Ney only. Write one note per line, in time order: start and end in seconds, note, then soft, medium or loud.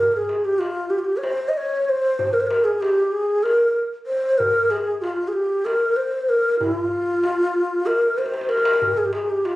0.00 0.12 A#4 medium
0.12 0.18 A#4 medium
0.17 0.46 G#4 medium
0.45 0.60 G4 medium
0.59 0.92 F4 medium
0.90 1.00 G4 medium
0.99 1.06 F4 medium
1.05 1.19 G4 medium
1.17 1.25 C#5 medium
1.23 1.50 C5 medium
1.49 1.54 D#5 medium
1.54 1.85 C#5 medium
1.54 1.58 D#5 medium
1.85 1.90 C#5 medium
1.89 2.35 C5 loud
2.33 2.42 A#4 medium
2.40 2.48 C5 medium
2.47 2.66 A#4 medium
2.64 2.82 G#4 medium
2.81 3.14 G4 medium
3.12 3.45 G#4 medium
3.43 3.80 A#4 medium
4.06 4.40 C5 medium
4.38 4.72 A#4 medium
4.70 5.03 G#4 medium
5.02 5.29 F4 medium
5.28 5.34 G#4 soft
5.33 5.67 G4 medium
5.65 5.98 A#4 medium
5.96 6.31 C5 medium
6.29 6.59 A#4 medium
6.60 6.77 E4 medium
6.77 7.88 F4 medium
7.86 8.19 A#4 medium
8.18 8.51 C5 medium
8.49 8.99 A#4 medium
8.98 9.07 G#4 medium
9.05 9.14 G4 medium
9.13 9.31 G#4 medium
9.30 9.47 G4 medium
9.45 9.56 F4 medium